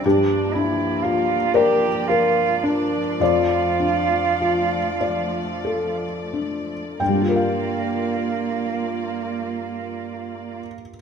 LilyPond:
<<
  \new Staff \with { instrumentName = "Felt piano" } { \time 6/8 \key g \minor \tempo 4. = 32 << { g'4. bes'4. | d''4. r4. | <g, g d' f' bes' f'' g''>2. | } \\ { g,8 d'8 f'8 d''8 bes'8 d'8 | f,8 d'8 f'8 d''8 a'8 d'8 | r2. | } >> }
  \new Staff \with { instrumentName = "Cello" } { \time 6/8 \key g \minor d'8 e'8 f'8 g'8 f'8 d'8 | f'2~ f'16 r8. | bes2. | }
  \new Staff \with { instrumentName = "String section" } { \time 6/8 \key g \minor << { <f d''>2.~ | <f d''>2. | <f' d''>2. | } \\ { bes2. | a2. | bes2. | } >> }
>>